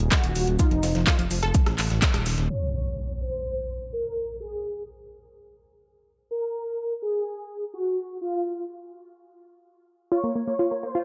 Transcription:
Already playing: G#4
0.12 F#4, kick, snare, clap, closed hi-hat, shaker
0.24 D#1, closed hi-hat
0.35 D#1, open hi-hat, shaker
0.47 D#1, closed hi-hat
0.59 D#4 F4, kick, closed hi-hat, shaker
0.71 F1 F3, closed hi-hat
0.83 F1 F3, snare, open hi-hat, shaker
0.95 F1 F3, snare, closed hi-hat
1.07 F4, kick, snare, clap, closed hi-hat, shaker
1.19 F1 F3, closed hi-hat
1.31 F1 F3, open hi-hat, shaker
1.43 F1 A4, cross-stick, closed hi-hat
1.55 kick, closed hi-hat, shaker
1.66 A1, cross-stick, snare, closed hi-hat
1.78 A1, clap, open hi-hat, shaker
1.90 A1, snare, closed hi-hat
2.02 kick, snare, clap, closed hi-hat, shaker
2.14 D#1, cross-stick, closed hi-hat
2.26 D#1, snare, open hi-hat, shaker
2.38 D#1, snare, closed hi-hat
2.50 C#5, crash, impact
3.21 C5
3.93 A#4
4.40 G#4
6.31 A#4
7.02 G#4
7.74 F#4
8.21 F4
10.12 F4 C#5
10.24 A#3
10.35 A#3
10.47 A#3
10.59 F4
10.71 A#3
10.83 A#3 C5
10.95 F4

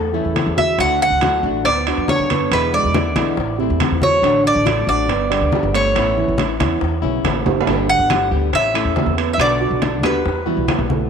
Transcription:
Already playing: E2 A4
0.13 E3 A3 C#4 E4, high conga
0.25 E2
0.35 E3 A3 C#4 E4, high bongo, low bongo, high conga, high timbale
0.46 E2
0.57 F#3 F#4 E5, high bongo, high conga
0.78 D2 D3 A3 D4 F#4 F#5, high bongo, high conga, high timbale
1.01 F#5, high conga
1.10 D2
1.21 D3 F#3 A3 D4 F#4, high bongo, high conga, high timbale
1.43 A1 A3 D4 F#4, high conga
1.65 D2 B3 B4 D5, muted nylon-string guitar stroke, high bongo, high conga, high timbale
1.87 B3 D4 F#4 D5, high conga, high timbale
1.97 F#2
2.08 D3 B3 D4 F#4 C#5, high bongo, low bongo, high conga
2.19 F#2
2.30 B3 B4, high conga, high timbale
2.51 E2 B2 D3 G#3 B3 E4 B4, high bongo, high conga, high timbale
2.73 G#3 G#4 D5, high bongo, high conga
2.84 E2
2.94 D3 G#3 B3 D4 E4 D5, high bongo, high conga, high timbale
3.16 B1 D3 E3 G#3 B3 E4, high conga, high timbale
3.37 A1, muted nylon-string guitar stroke, high bongo, high conga
3.58 C3 C4 E4, high conga
3.63 A3
3.70 E2
3.80 E3 A3 C4 E4, high bongo, low bongo, high conga, high timbale
3.91 E2
4.02 F#3 F#4 C#5, high bongo, high conga
4.22 A1 D3 A3 D4 F#4, high bongo, high conga, high timbale
4.45 D5, high conga
4.55 A1
4.65 D3 F#3 A3 D4 F#4, high bongo, high conga, high timbale
4.87 A1 A3 D4 F#4 D5, high conga
5.08 G1 B3 B4, muted nylon-string guitar stroke, high bongo, high conga, high timbale
5.30 D3 G3 B3 D4 G4 D5, high conga, high timbale
5.41 D2
5.52 D3 G3 B3 G4, high bongo, low bongo, high conga, low timbale
5.63 G1
5.74 A3 A4 C#5, high timbale
5.95 A1 E3 B3 C#4 E4, high bongo, high conga, high timbale
6.17 E3 E4, high bongo, high conga
6.28 A1
6.38 E3 B3 C#4 E4 C#5, high bongo, high conga, high timbale
6.59 E2 E3 B3 C#4 E4, high bongo, high conga, high timbale
6.81 E2, muted nylon-string guitar stroke, high bongo, high conga
7.02 B1 C#3 B3 C#4 E4, high conga
7.24 A1 E3 B3 C#4 E4, high bongo, low bongo, high conga, high timbale, low timbale
7.46 G1 G3 G4, high bongo, high conga, high timbale
7.61 low timbale
7.66 G1 B2 D3 G3 B3 D4 G4, high bongo, high conga, high timbale
7.89 F#5, high conga
7.99 G1
8.10 D3 G3 B3 G4, high bongo, high conga, high timbale, claves
8.31 D2 D3 G3 B3 G4, high conga
8.53 A1 C#4 C#5 E5, muted nylon-string guitar stroke, high bongo, high conga, high timbale
8.74 A3 C#4 E4 E5, high conga, high timbale, claves
8.85 E2
8.96 A3 C#4 E4, high bongo, low bongo, high conga, low timbale
9.06 E2
9.17 B3 B4, high timbale
9.33 E5
9.38 B1 B2 D3 B3 D4 F#4 D5, high bongo, high conga, high timbale, claves
9.60 F#3 F#4, high bongo, high conga
9.71 B1
9.81 D3 B3 D4 F#4 D5, high bongo, high conga, high timbale
10.03 D#2 D3 G3 B3 D4 F#4 G4 B4, high bongo, high conga, high timbale, claves
10.25 E2, muted nylon-string guitar stroke, high bongo, high conga
10.46 E3 G3 B3 E4 F#4, high conga
10.57 B1
10.67 E3 G3 B3 F#4, high bongo, low bongo, high conga, high timbale, low timbale, claves
10.79 B1
10.90 A3 A4, high bongo, high conga

